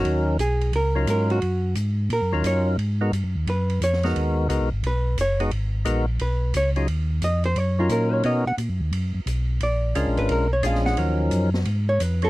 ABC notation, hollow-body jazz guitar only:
X:1
M:4/4
L:1/8
Q:"Swing" 1/4=176
K:Ebm
V:1 name="Hollow-body jazz guitar"
G2 A2 B2 B G- | G2 z2 B2 d z | z4 c2 d z | z4 c2 d z |
z4 c2 d z | z2 e =c d F B d | ^d ^f z6 | =d3 c B ^c f g- |
g2 z3 d c =A |]